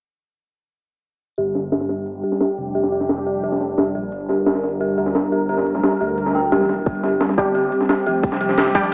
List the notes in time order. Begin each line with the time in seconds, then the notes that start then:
1.38 G1 G3 D4 G4, closed hi-hat, ride
1.46 ride
1.55 snare, closed hi-hat, ride
1.72 G4, snare, closed hi-hat, ride
1.81 snare, closed hi-hat
1.89 G1 G4, snare, closed hi-hat, ride
1.98 closed hi-hat
2.06 closed hi-hat, ride
2.15 closed hi-hat
2.23 G4, closed hi-hat, ride
2.32 snare
2.41 G4, snare, closed hi-hat, ride
2.49 ride
2.58 F1, closed hi-hat, ride
2.75 G4, closed hi-hat, ride
2.83 snare
2.92 G4, closed hi-hat, ride
3.01 snare
3.09 snare, closed hi-hat, ride
3.18 snare, closed hi-hat
3.26 G4, closed hi-hat, open hi-hat
3.35 closed hi-hat
3.43 G4, closed hi-hat, ride
3.52 snare, closed hi-hat
3.61 snare, closed hi-hat, ride
3.78 G4, snare, closed hi-hat, ride
3.95 A#1 G4, closed hi-hat, ride
4.12 G1 A#4, closed hi-hat, ride
4.21 ride
4.29 G4, snare, closed hi-hat, ride
4.46 G4, snare, closed hi-hat, ride
4.55 snare, closed hi-hat
4.63 G1, snare, closed hi-hat, ride
4.72 closed hi-hat
4.81 G4, closed hi-hat, ride
4.89 closed hi-hat
4.98 D2 G4, closed hi-hat, ride
5.06 snare
5.15 G1, snare, closed hi-hat, ride
5.23 ride
5.32 G4, closed hi-hat, ride
5.49 G1 G4, closed hi-hat, ride
5.58 snare
5.66 closed hi-hat, ride
5.75 snare
5.83 G4, snare, closed hi-hat, ride
5.92 snare, closed hi-hat
6.01 D2 G4, closed hi-hat, open hi-hat
6.09 closed hi-hat
6.18 closed hi-hat, ride
6.26 snare, closed hi-hat
6.35 G5, snare, closed hi-hat, ride
6.52 G4, snare, closed hi-hat, ride
6.61 snare
6.69 snare, closed hi-hat, ride
6.86 G1 C4 G4, kick, closed hi-hat, ride
6.95 ride
7.03 G4, snare, closed hi-hat, ride
7.21 snare, closed hi-hat, ride
7.29 snare, closed hi-hat
7.38 G1 G3 D4 G4, kick, snare, closed hi-hat, ride
7.46 closed hi-hat
7.55 G4, closed hi-hat, ride
7.63 closed hi-hat
7.72 closed hi-hat, ride
7.81 snare
7.89 G4, snare, closed hi-hat, ride
7.98 ride
8.06 F1 G4, closed hi-hat, ride
8.23 kick, closed hi-hat, ride
8.32 snare
8.41 G4, closed hi-hat, ride
8.49 snare
8.58 G4, snare, closed hi-hat, ride
8.66 snare, closed hi-hat
8.75 G3 D4 G4, kick, closed hi-hat, open hi-hat
8.83 closed hi-hat